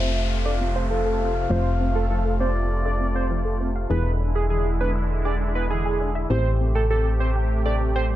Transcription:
Already playing: fm bass F1, supersaw synth C3 A3 F4, violin E5, downlifter
0.00 synth arpeggio sound C4, digital synth lead C5
0.16 synth arpeggio sound F5
0.30 violin F5
0.45 synth arpeggio sound A4, digital synth lead D5
0.61 synth arpeggio sound C4
0.75 digital synth lead C5, synth arpeggio sound F5
0.90 synth arpeggio sound F3, digital synth lead A4, violin F5
1.06 synth arpeggio sound A4
1.20 synth arpeggio sound C4
1.36 synth arpeggio sound F5
1.49 fm bass F1, synth arpeggio sound F3, synth pluck A3 C4 F4 C5, digital synth lead C5
1.80 synth arpeggio sound C4
1.95 digital synth lead A4, synth arpeggio sound F5
2.10 synth arpeggio sound F3, digital synth lead A4
2.25 synth arpeggio sound A4
2.40 synth arpeggio sound C4, digital synth lead C5, violin D5
2.55 synth arpeggio sound F5
2.85 synth arpeggio sound A4, digital synth lead D5
3.00 synth arpeggio sound C4
3.15 digital synth lead C5, synth arpeggio sound F5
3.30 synth arpeggio sound F3
3.45 synth arpeggio sound A4
3.60 synth arpeggio sound C4
3.75 synth arpeggio sound F5
3.89 fm bass E1, supersaw synth D3 G#3 E4, synth arpeggio sound E3, synth pluck B3 D4 E4 G#4, digital synth lead B4
4.20 synth arpeggio sound D4
4.35 digital synth lead G#4, synth arpeggio sound E5
4.50 synth arpeggio sound E3, digital synth lead G#4
4.65 synth arpeggio sound G#4
4.80 synth arpeggio sound D4, digital synth lead B4
4.95 synth arpeggio sound E5
5.25 synth arpeggio sound G#4, digital synth lead D5
5.40 synth arpeggio sound D4
5.55 digital synth lead B4, synth arpeggio sound E5
5.70 synth arpeggio sound E3, digital synth lead G#4
5.85 synth arpeggio sound G#4
6.00 synth arpeggio sound D4
6.15 synth arpeggio sound E5
6.30 fm bass A1, supersaw synth C3 A3 G4, synth arpeggio sound G3, synth pluck A3 C4 E4 G4, digital synth lead C5
6.60 synth arpeggio sound C4
6.75 digital synth lead A4, synth arpeggio sound G5
6.90 synth arpeggio sound G3, digital synth lead A4
7.05 synth arpeggio sound A4
7.20 synth arpeggio sound C4, digital synth lead C5
7.36 synth arpeggio sound G5
7.65 synth arpeggio sound A4, digital synth lead D5
7.80 synth arpeggio sound C4
7.95 digital synth lead C5, synth arpeggio sound G5
8.10 synth arpeggio sound G3

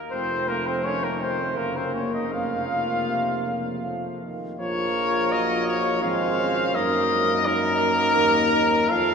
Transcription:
0.11 bass trombone F1, trombone F3, french horn A3, flugelhorn C4, trumpet C5
0.48 flugelhorn A#3, trumpet A#4
0.66 flugelhorn C4, trumpet C5
0.84 trombone D#3, flugelhorn C#4, trumpet C#5
1.04 flugelhorn A#3, trumpet A#4
1.21 flugelhorn C4, trumpet C5
1.56 bass trombone F#1, trombone C#3, french horn A#3, flugelhorn A#3, trumpet A#4
1.77 flugelhorn C4, trumpet C5
1.95 flugelhorn C#4, trumpet C#5
2.13 flugelhorn D#4, trumpet D#5
2.31 bass trombone F1, trombone C#3, french horn A#3, flugelhorn F4, trumpet F5
3.08 trombone C3
3.46 trombone C#3
3.83 trombone F3, french horn A3
4.22 trombone D#3
4.59 bass trombone A#1, trombone F3, french horn F4, flugelhorn A#4, trumpet C#5
5.32 trombone F#3, trumpet D#5
5.68 trumpet C#5
6.02 bass trombone G#1, trombone G#3, french horn C4, flugelhorn C5, trumpet F5
6.40 french horn C#4
6.75 bass trombone F#2, trombone A#3, french horn D#4, flugelhorn A#4, trumpet D#5
7.46 trombone A#3, french horn D#4, trumpet A#4, flugelhorn A#4
8.18 bass trombone D#2
8.89 bass trombone F2, trombone C4, french horn F4, flugelhorn A4, trumpet F5

